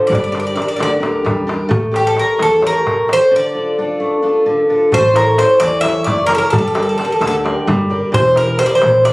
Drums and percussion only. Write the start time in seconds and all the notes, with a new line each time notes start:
0.12 darbuka dum
0.35 darbuka tek
0.57 darbuka tek
0.80 darbuka tek
1.03 darbuka tek
1.26 darbuka tek, darbuka dum
1.49 darbuka tek
1.71 darbuka dum
1.94 darbuka tek
2.17 darbuka tek
2.39 darbuka tek
2.62 darbuka tek
2.87 darbuka tek, darbuka dum
3.09 darbuka tek
4.92 darbuka dum
5.04 darbuka tek
5.16 darbuka tek
5.28 darbuka tek
5.38 darbuka tek
5.60 darbuka tek
5.73 darbuka tek
5.84 darbuka tek
6.07 darbuka tek, darbuka dum
6.18 darbuka tek
6.29 darbuka tek
6.42 darbuka tek
6.53 darbuka dum
6.64 darbuka tek
6.75 darbuka tek
6.88 darbuka tek
6.99 darbuka tek
7.22 darbuka tek
7.34 darbuka tek
7.46 darbuka tek
7.68 darbuka tek, darbuka dum
7.80 darbuka tek
8.03 darbuka tek
8.14 darbuka dum
8.25 darbuka tek
8.36 darbuka tek
8.48 darbuka tek
8.59 darbuka tek
8.82 darbuka tek
8.94 darbuka tek
9.05 darbuka tek